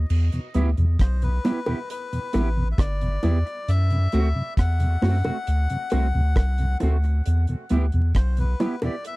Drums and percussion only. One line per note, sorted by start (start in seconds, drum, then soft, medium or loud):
0.10 crash loud
0.32 closed hi-hat soft
0.54 closed hi-hat medium
0.77 closed hi-hat soft
0.99 kick loud
0.99 cross-stick loud
0.99 closed hi-hat medium
1.22 closed hi-hat medium
1.45 closed hi-hat medium
1.45 low bongo medium
1.66 high bongo medium
1.90 closed hi-hat loud
2.13 closed hi-hat medium
2.33 closed hi-hat medium
2.33 high bongo medium
2.78 kick loud
2.78 cross-stick loud
2.78 closed hi-hat loud
2.78 high bongo medium
3.01 closed hi-hat medium
3.23 closed hi-hat medium
3.23 low bongo medium
3.47 closed hi-hat soft
3.68 closed hi-hat medium
3.90 closed hi-hat soft
4.12 closed hi-hat medium
4.57 kick loud
4.57 cross-stick loud
4.57 closed hi-hat medium
4.80 closed hi-hat medium
5.02 cross-stick medium
5.02 open hi-hat medium
5.02 low bongo medium
5.25 closed hi-hat soft
5.25 high bongo medium
5.47 closed hi-hat medium
5.70 closed hi-hat medium
5.90 closed hi-hat medium
5.90 high bongo medium
6.36 kick loud
6.36 cross-stick loud
6.36 closed hi-hat medium
6.36 high bongo medium
6.58 closed hi-hat medium
6.80 closed hi-hat medium
6.80 low bongo medium
7.04 closed hi-hat soft
7.26 closed hi-hat medium
7.47 closed hi-hat soft
7.69 closed hi-hat medium
7.92 closed hi-hat soft
8.15 kick loud
8.15 cross-stick loud
8.15 closed hi-hat medium
8.37 closed hi-hat medium
8.60 closed hi-hat medium
8.60 low bongo medium
8.82 closed hi-hat soft
8.82 high bongo medium
9.04 closed hi-hat loud